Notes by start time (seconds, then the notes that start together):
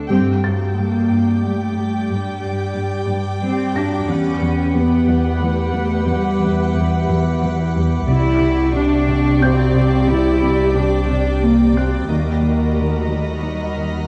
0.09 G2 C4 G4 D5 G5
0.43 G2 A6
0.77 G2 A#3
1.10 G2
1.43 G3 A3
1.76 G2
2.10 G2 G3
2.44 G2
2.77 G2
3.10 G2
3.43 G3 C4
3.76 G2 D4 A#6
4.09 E2 C#4 G4 B4 E5 F#5
4.43 E2
4.76 E2 B3
5.10 E2
5.43 E3 A3
5.77 E2
6.09 E2 G3
6.43 E2
6.76 E2
7.09 E2
7.42 E3
7.76 E2
8.09 C2 C3 C4 E4 G4 D5 G5 C#6
8.43 C3
8.76 C3 D4
9.09 C3
9.42 C4 G6
9.75 C3
10.08 C3 E4
10.42 C3
10.75 C3 D4
11.08 C3
11.42 A#3 C4
11.75 C3 C4 F#6
12.08 D#2 D#3 A#3 F#4 A#4 D#5 F#5 A#5 B5
12.42 D#3
12.76 D#3 A3
13.09 D#3
13.43 G3 D#4 F6
13.76 D#3